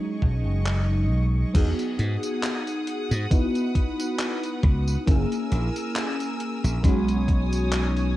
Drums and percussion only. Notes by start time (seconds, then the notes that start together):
0.22 kick
0.66 clap
1.55 kick, closed hi-hat, crash, tambourine
1.79 closed hi-hat, tambourine
1.99 closed hi-hat
2.23 closed hi-hat, tambourine
2.43 clap, closed hi-hat, tambourine
2.67 closed hi-hat, tambourine
2.87 closed hi-hat
3.11 closed hi-hat, tambourine
3.31 kick, closed hi-hat, tambourine
3.55 closed hi-hat, tambourine
3.75 kick, closed hi-hat
4.00 closed hi-hat, tambourine
4.19 clap, closed hi-hat, tambourine
4.44 closed hi-hat, tambourine
4.63 kick, closed hi-hat
4.88 tambourine
5.08 kick, closed hi-hat, tambourine
5.32 closed hi-hat, tambourine
5.52 closed hi-hat
5.76 closed hi-hat, tambourine
5.96 clap, closed hi-hat, tambourine
6.20 closed hi-hat, tambourine
6.40 closed hi-hat
6.65 closed hi-hat, tambourine
6.84 kick, closed hi-hat, tambourine
7.08 closed hi-hat, tambourine
7.28 kick, closed hi-hat
7.53 closed hi-hat, tambourine
7.72 clap, closed hi-hat, tambourine
7.96 closed hi-hat, tambourine